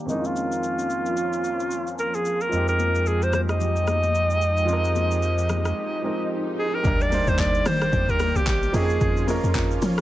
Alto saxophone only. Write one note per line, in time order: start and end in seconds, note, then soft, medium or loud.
0.10 0.27 D#4 medium
0.26 1.88 F4 medium
1.99 2.17 A#4 medium
2.15 2.43 G#4 medium
2.42 2.68 A#4 medium
2.69 3.09 A#4 loud
3.07 3.24 G#4 medium
3.23 3.34 C5 loud
3.34 3.41 C5 medium
3.50 6.27 D#5 loud
6.59 6.76 G#4 medium
6.75 7.03 A#4 medium
7.01 7.30 D5 loud
7.28 7.41 C5 loud
7.40 7.68 D5 loud
7.67 8.11 C5 loud
8.10 8.38 A#4 loud
8.37 8.47 G4 medium
8.48 8.77 G4 medium
8.75 9.29 G#4 medium